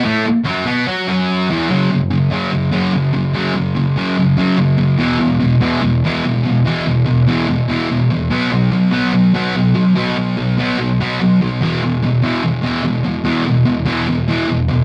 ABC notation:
X:1
M:4/4
L:1/8
Q:1/4=145
K:Elyd
V:1 name="Distorted electric guitar" clef=bass
[=A,,=A,] z [F,,F,] [B,,B,] [F,F] [F,,F,]2 [E,,E,] | [F,,C,F,] [F,,C,] [F,,C,] [F,,C,F,] [F,,C,] [F,,C,F,] [F,,C,] [F,,C,] | [F,,C,F,] [F,,C,] [F,,C,] [F,,C,F,] [F,,C,] [F,,C,F,] [F,,C,] [F,,C,] | [E,,B,,E,] [E,,B,,] [E,,B,,] [E,,B,,E,] [E,,B,,] [E,,B,,E,] [E,,B,,] [E,,B,,] |
[E,,B,,E,] [E,,B,,] [E,,B,,] [E,,B,,E,] [E,,B,,] [E,,B,,E,] [E,,B,,] [E,,B,,] | [B,,F,B,] [B,,F,] [B,,F,] [B,,F,B,] [B,,F,] [B,,F,B,] [B,,F,] [B,,F,] | [B,,F,B,] [B,,F,] [B,,F,] [B,,F,B,] [B,,F,] [B,,F,B,] [B,,F,] [B,,F,] | [E,,B,,E,] [E,,B,,] [E,,B,,] [E,,B,,E,] [E,,B,,] [E,,B,,E,] [E,,B,,] [E,,B,,] |
[E,,B,,E,] [E,,B,,] [E,,B,,] [E,,B,,E,] [E,,B,,] [E,,B,,E,] [E,,B,,] [E,,B,,] |]